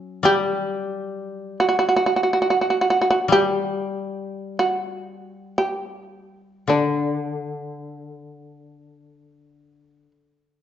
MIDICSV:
0, 0, Header, 1, 3, 480
1, 0, Start_track
1, 0, Tempo, 500000
1, 10197, End_track
2, 0, Start_track
2, 0, Title_t, "Shamisen"
2, 0, Program_c, 0, 106
2, 0, Note_on_c, 0, 66, 71
2, 211, Note_off_c, 0, 66, 0
2, 242, Note_on_c, 0, 67, 81
2, 1506, Note_off_c, 0, 67, 0
2, 1535, Note_on_c, 0, 66, 71
2, 1607, Note_off_c, 0, 66, 0
2, 1618, Note_on_c, 0, 66, 50
2, 1707, Note_off_c, 0, 66, 0
2, 1717, Note_on_c, 0, 66, 53
2, 1801, Note_off_c, 0, 66, 0
2, 1810, Note_on_c, 0, 66, 48
2, 1874, Note_off_c, 0, 66, 0
2, 1886, Note_on_c, 0, 66, 53
2, 1969, Note_off_c, 0, 66, 0
2, 1980, Note_on_c, 0, 66, 46
2, 2065, Note_off_c, 0, 66, 0
2, 2077, Note_on_c, 0, 66, 48
2, 2131, Note_off_c, 0, 66, 0
2, 2143, Note_on_c, 0, 66, 42
2, 2227, Note_off_c, 0, 66, 0
2, 2239, Note_on_c, 0, 66, 43
2, 2310, Note_off_c, 0, 66, 0
2, 2321, Note_on_c, 0, 66, 40
2, 2391, Note_off_c, 0, 66, 0
2, 2403, Note_on_c, 0, 66, 46
2, 2498, Note_off_c, 0, 66, 0
2, 2509, Note_on_c, 0, 66, 40
2, 2582, Note_off_c, 0, 66, 0
2, 2594, Note_on_c, 0, 66, 50
2, 2682, Note_off_c, 0, 66, 0
2, 2700, Note_on_c, 0, 66, 50
2, 2775, Note_off_c, 0, 66, 0
2, 2786, Note_on_c, 0, 66, 57
2, 2868, Note_off_c, 0, 66, 0
2, 2894, Note_on_c, 0, 66, 51
2, 2967, Note_off_c, 0, 66, 0
2, 2981, Note_on_c, 0, 66, 61
2, 3055, Note_off_c, 0, 66, 0
2, 3190, Note_on_c, 0, 67, 72
2, 4381, Note_off_c, 0, 67, 0
2, 4408, Note_on_c, 0, 66, 65
2, 5331, Note_off_c, 0, 66, 0
2, 5356, Note_on_c, 0, 67, 64
2, 6384, Note_off_c, 0, 67, 0
2, 6428, Note_on_c, 0, 62, 46
2, 7589, Note_off_c, 0, 62, 0
2, 7589, Note_on_c, 0, 63, 46
2, 7896, Note_off_c, 0, 63, 0
2, 7896, Note_on_c, 0, 62, 46
2, 8242, Note_off_c, 0, 62, 0
2, 8242, Note_on_c, 0, 63, 46
2, 8559, Note_off_c, 0, 63, 0
2, 8559, Note_on_c, 0, 62, 46
2, 9707, Note_off_c, 0, 62, 0
2, 10197, End_track
3, 0, Start_track
3, 0, Title_t, "Koto"
3, 0, Program_c, 1, 107
3, 0, Note_on_c, 1, 54, 43
3, 0, Note_on_c, 1, 61, 35
3, 221, Note_on_c, 1, 55, 49
3, 868, Note_off_c, 1, 61, 0
3, 1440, Note_off_c, 1, 54, 0
3, 3140, Note_off_c, 1, 55, 0
3, 3152, Note_on_c, 1, 55, 44
3, 6396, Note_off_c, 1, 55, 0
3, 6408, Note_on_c, 1, 50, 40
3, 9653, Note_off_c, 1, 50, 0
3, 10197, End_track
0, 0, End_of_file